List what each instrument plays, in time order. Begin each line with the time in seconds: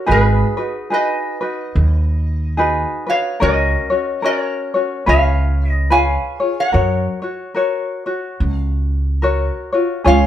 Already playing: resonator guitar played with a steel bar A#4
0.06 upright bass G#1, ukulele D#4 F#4 G#4 B4
0.11 resonator guitar played with a steel bar G#4 B4
0.57 ukulele D#4 F#4 B4
0.90 ukulele D#4 F#4 G#4 B4, resonator guitar played with a steel bar B4 D#5
1.41 ukulele D#4 F#4 B4
1.75 upright bass D#2
2.57 ukulele D#4 F#4 G#4 B4
3.07 ukulele D#4 F#4 B4, resonator guitar played with a steel bar C#5 F5
3.40 upright bass C#2, ukulele C#4 F#4 A#4 C#5, resonator guitar played with a steel bar A#4 D#5
3.90 ukulele C#4 F#4 C#5
4.22 ukulele C#4 F#4 A#4 C#5, resonator guitar played with a steel bar C#5
4.27 resonator guitar played with a steel bar A#4
4.74 ukulele C#4 F#4 C#5
5.06 upright bass C#2, ukulele F4 G#4 B4 C#5, resonator guitar played with a steel bar C#5 F5
5.70 resonator guitar played with a steel bar D#5
5.90 ukulele F4 G#4 B4 C#5, resonator guitar played with a steel bar F5 G#5
6.40 ukulele F4 G#4 C#5
6.60 resonator guitar played with a steel bar C#5 F#5
6.72 upright bass F#2, ukulele F#4 A#4 C#5
7.22 ukulele F#4 C#5
7.54 ukulele F#4 A#4 C#5
8.06 ukulele F#4 C#5
8.40 upright bass C#2
8.53 resonator guitar played with a steel bar F5
9.22 ukulele F#4 A#4 C#5
9.72 ukulele F4 F#4 C#5
10.04 upright bass C#2, ukulele C#4 F4 G#4 C#5, resonator guitar played with a steel bar C#5 F5